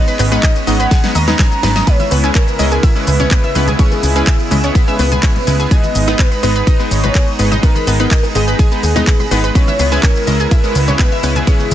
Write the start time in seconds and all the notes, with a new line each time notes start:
Already playing: G#3 B3 C#4 D#4 B4 D#5
0.08 B4 B5, closed hi-hat, shaker
0.19 G#1 B3 B4, clap, open hi-hat, shaker
0.32 G#3 B3 D#4 B4 B5, closed hi-hat, shaker
0.43 D#4 D#5, kick, clap, closed hi-hat, ride, shaker
0.56 closed hi-hat, shaker
0.67 G#1 G#3 B3 D#4 D#5 F#5, open hi-hat, shaker
0.80 B4 B5, closed hi-hat, shaker
0.91 G#4 G#5, kick, snare, closed hi-hat, ride, shaker
1.04 G#3 B3 D#4 B4, snare, closed hi-hat, shaker
1.15 D#2 D#5 A#5 D#6, open hi-hat, shaker
1.28 G#3 B3 D#4 B4 D#5, snare, closed hi-hat, shaker
1.39 G#5 G#6, kick, snare, clap, closed hi-hat, ride, shaker
1.52 closed hi-hat, shaker
1.63 G#1 G#3 B3 D#4 B4, snare, open hi-hat, shaker
1.76 D#5 D#6, snare, closed hi-hat, shaker
1.87 C#3 G#3 B3 C#4 E4 B4 C#5, kick, closed hi-hat, ride, shaker
2.00 E5 E6, closed hi-hat, high conga, shaker
2.11 C#2 B3 B4, open hi-hat, shaker
2.24 G#3 C#4 E4 G#4 B4 G#5, closed hi-hat, shaker
2.35 C#4 A#4 C#5, kick, clap, closed hi-hat, ride, high bongo, shaker
2.48 closed hi-hat, shaker
2.59 C#2 G#3 C#4 E4 D#5, open hi-hat, shaker
2.72 G#4 G#5, closed hi-hat, shaker
2.83 E4 E5, kick, closed hi-hat, ride, high bongo, shaker
2.96 G#3 C#4 E4 B4, shaker
3.07 C#2 B4, open hi-hat, shaker
3.20 C#4 C#5, closed hi-hat, low conga, shaker
3.31 G#3 B3 C#4 E4 B4, kick, clap, closed hi-hat, ride, shaker
3.43 E5 E6, closed hi-hat, high bongo
3.55 C#2 G#3 B3 C#4 E4 B4, open hi-hat, shaker
3.67 G#4 G#5, closed hi-hat, low conga, shaker
3.79 G#3 C#4 E4 G#4 B4 C#5, kick, closed hi-hat, ride, shaker
3.92 closed hi-hat, high bongo, high conga, shaker
4.03 C#2, open hi-hat, shaker
4.16 G#3 C#4 E4 G#4 B4 G#5, closed hi-hat, shaker
4.27 E4 E5, kick, clap, closed hi-hat, ride, shaker
4.40 closed hi-hat, shaker
4.51 C#2 G#3 C#4 E4 G#4 D#5, open hi-hat, high bongo, high conga, shaker
4.64 C#4 C#5, closed hi-hat, shaker
4.75 B3 B4, kick, closed hi-hat, ride, shaker
4.88 G#3 C#4 E4 B4 E5 E6, shaker
4.99 C#2 B3 B4, open hi-hat, high bongo, shaker
5.12 G#4 G#5, closed hi-hat, low conga, shaker
5.23 G#3 C#4 E4 B4 C#5, kick, clap, closed hi-hat, ride, high conga, shaker
5.36 closed hi-hat, low conga
5.47 C#2 G#3 C#4 E4 B4, open hi-hat, shaker
5.60 G#4 G#5, closed hi-hat, high bongo, shaker
5.71 G#3 B3 D#4 G#4 B4 D#5 G#5, kick, closed hi-hat, ride, shaker
5.84 closed hi-hat, high conga, shaker
5.95 G#1, open hi-hat, shaker
6.08 G#3 B3 D#4 B4 D#5, closed hi-hat, high bongo, shaker
6.19 B3 B4, kick, clap, closed hi-hat, ride, shaker
6.32 B5, closed hi-hat, shaker
6.43 G#1 G#3 B3 D#4 B4 D#5, open hi-hat, shaker
6.56 B4 B5, closed hi-hat, shaker
6.67 D#4 D#5, kick, closed hi-hat, ride, high bongo, shaker
6.80 G#3 B3 D#4 B4, shaker
6.91 G#1 C#5, open hi-hat, shaker
7.04 B4 B5, closed hi-hat, low conga, shaker
7.15 G#3 B3 D#4 G#4 B4 G#5, kick, clap, closed hi-hat, ride, high bongo, shaker
7.28 closed hi-hat
7.39 G#1 G#3 B3 D#4 B4, open hi-hat, shaker
7.52 D#4 D#5, closed hi-hat, low conga, shaker
7.63 G#3 B3 D#4 A#4 B4, kick, closed hi-hat, ride, shaker
7.76 B5, closed hi-hat, high bongo, high conga, shaker
7.87 G#1 B3 B4, open hi-hat, shaker
8.00 G#3 B3 D#4 B4 B5, closed hi-hat, shaker
8.11 D#4 D#5, kick, clap, closed hi-hat, ride, shaker
8.23 closed hi-hat, high bongo, shaker
8.35 G#1 G#3 B3 D#4 G#4 D#5, open hi-hat, high conga, shaker
8.48 B4 B5, closed hi-hat, shaker
8.59 G#4 G#5, kick, closed hi-hat, ride, shaker
8.72 G#3 B3 D#4 B4, closed hi-hat, shaker
8.83 D#2 G#4, open hi-hat, high bongo, shaker
8.96 G#3 B3 D#4 B4 D#5, closed hi-hat, low conga, shaker
9.07 B3 B4, kick, clap, closed hi-hat, ride, high conga, shaker
9.19 B5, closed hi-hat, low conga, shaker
9.31 G#1 G#3 B3 D#4 B4, open hi-hat, high bongo, shaker
9.44 B4 B5, closed hi-hat, shaker
9.55 C#3 G#3 B3 C#4 E4 B4 C#5, kick, closed hi-hat, ride, shaker
9.68 E5 E6, closed hi-hat, high conga, shaker
9.79 C#2 B3 B4, open hi-hat, shaker
9.92 G#3 C#4 E4 G#4 B4 G#5, closed hi-hat, shaker
10.03 C#4 A#4 C#5, kick, clap, closed hi-hat, ride, high bongo, shaker
10.16 closed hi-hat, shaker
10.27 C#2 G#3 C#4 E4 D#5, open hi-hat, shaker
10.40 G#4 G#5, closed hi-hat, shaker
10.51 E4 E5, kick, closed hi-hat, ride, high bongo, shaker
10.64 G#3 C#4 E4 B4, shaker
10.75 C#2 B4, open hi-hat, shaker
10.88 C#4 C#5, closed hi-hat, low conga, shaker
10.99 G#3 B3 C#4 E4 B4, kick, clap, closed hi-hat, ride, shaker
11.12 E5 E6, closed hi-hat, high bongo
11.23 C#2 G#3 B3 C#4 E4 B4, open hi-hat, shaker
11.35 G#4 G#5, closed hi-hat, low conga, shaker
11.47 G#3 C#4 E4 G#4 B4 C#5, kick, closed hi-hat, ride, shaker
11.59 closed hi-hat, high bongo, high conga, shaker
11.71 C#2, open hi-hat